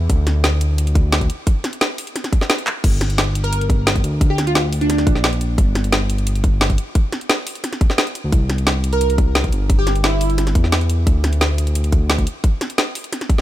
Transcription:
0.10 analog synth bass D2, kick, closed hi-hat
0.27 snare, closed hi-hat
0.44 snare, closed hi-hat
0.61 closed hi-hat
0.78 closed hi-hat
0.87 closed hi-hat
0.95 kick, closed hi-hat
1.12 snare, closed hi-hat
1.21 kick, closed hi-hat
1.30 closed hi-hat
1.47 kick, closed hi-hat
1.64 snare, closed hi-hat
1.73 closed hi-hat
1.81 snare, closed hi-hat
1.98 open hi-hat
2.07 closed hi-hat
2.16 snare, closed hi-hat
2.24 snare, closed hi-hat
2.33 kick, closed hi-hat
2.41 snare
2.50 snare, closed hi-hat
2.59 closed hi-hat
2.67 clap, closed hi-hat
2.84 analog synth bass G1, kick, closed hi-hat, crash
3.01 snare, closed hi-hat
3.10 closed hi-hat
3.18 snare, closed hi-hat
3.35 closed hi-hat
3.44 digital synth lead A#4, closed hi-hat
3.53 closed hi-hat
3.61 closed hi-hat
3.70 kick, closed hi-hat
3.87 snare, closed hi-hat
3.96 kick, closed hi-hat
4.04 analog synth bass D2, closed hi-hat
4.21 kick, closed hi-hat
4.30 digital synth lead G4
4.38 snare, closed hi-hat
4.47 digital synth lead F4, closed hi-hat
4.55 digital synth lead F4, snare, closed hi-hat
4.73 open hi-hat
4.81 digital synth lead D4, closed hi-hat
4.90 snare, closed hi-hat
4.98 snare, closed hi-hat
5.07 analog synth bass A#1, kick, closed hi-hat
5.15 snare
5.24 snare, closed hi-hat
5.33 closed hi-hat
5.41 closed hi-hat
5.58 analog synth bass G1, kick, closed hi-hat
5.75 snare, closed hi-hat
5.84 closed hi-hat
5.93 snare, closed hi-hat
6.10 closed hi-hat
6.18 closed hi-hat
6.27 closed hi-hat
6.35 closed hi-hat
6.44 kick, closed hi-hat
6.61 snare, closed hi-hat
6.70 kick, closed hi-hat
6.78 closed hi-hat
6.95 kick, closed hi-hat
7.12 snare, closed hi-hat
7.21 closed hi-hat
7.29 snare, closed hi-hat
7.47 open hi-hat
7.55 closed hi-hat
7.64 snare, closed hi-hat
7.73 snare, closed hi-hat
7.81 kick, closed hi-hat
7.90 snare
7.98 snare, closed hi-hat
8.07 closed hi-hat
8.15 closed hi-hat
8.24 analog synth bass D2
8.32 analog synth bass C2, kick, closed hi-hat
8.50 snare, closed hi-hat
8.58 closed hi-hat
8.67 snare, closed hi-hat
8.84 closed hi-hat
8.93 digital synth lead A#4, closed hi-hat
9.01 closed hi-hat
9.10 closed hi-hat
9.18 kick, closed hi-hat
9.35 snare, closed hi-hat
9.44 kick, closed hi-hat
9.52 analog synth bass G1, closed hi-hat
9.70 kick, closed hi-hat
9.79 digital synth lead G4
9.87 snare, closed hi-hat
9.96 closed hi-hat
10.04 digital synth lead E4, snare, closed hi-hat
10.21 open hi-hat
10.30 closed hi-hat
10.38 snare, closed hi-hat
10.47 snare, closed hi-hat
10.55 analog synth bass E2, kick, closed hi-hat
10.64 snare
10.72 snare, closed hi-hat
10.81 closed hi-hat
10.90 closed hi-hat
11.07 analog synth bass D2, kick, closed hi-hat
11.24 snare, closed hi-hat
11.33 closed hi-hat
11.41 snare, closed hi-hat
11.58 closed hi-hat
11.67 closed hi-hat
11.75 closed hi-hat
11.84 closed hi-hat
11.92 kick, closed hi-hat
12.10 snare, closed hi-hat
12.18 kick, closed hi-hat
12.27 closed hi-hat
12.44 kick, closed hi-hat
12.61 snare, closed hi-hat
12.70 closed hi-hat
12.78 snare, closed hi-hat
12.95 open hi-hat
13.04 closed hi-hat
13.13 snare, closed hi-hat
13.21 snare, closed hi-hat
13.30 kick, closed hi-hat

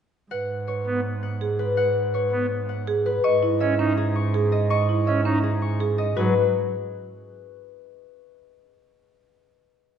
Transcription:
0.31 double bass G#2, marimba B4, harp F#5
0.68 marimba B4, harp C#5
0.86 pipe organ B3
1.23 harp F#5
1.41 marimba G#4
1.59 harp B4, marimba B4
1.77 marimba B4, harp F#5
2.14 marimba B4, harp C#5
2.32 pipe organ B3
2.69 harp F#5
2.87 marimba G#4
3.06 marimba B4, harp B4
3.24 double bass G#2, marimba D#5, harp C#6
3.43 marimba E4
3.60 pipe organ C#4, marimba D#5, harp E5
3.79 marimba C#4, pipe organ D#4
3.97 harp G#4
4.16 harp C#6
4.34 marimba G#4
4.52 harp D#5, marimba D#5
4.70 marimba D#5, harp C#6
4.89 marimba E4
5.07 pipe organ C#4, marimba D#5, harp E5
5.25 marimba C#4, pipe organ D#4
5.43 harp G#4
5.62 harp C#6
5.80 marimba G#4
5.98 harp D#5, marimba D#5
6.16 double bass G#2, pipe organ F#3, marimba F#4, harp B4

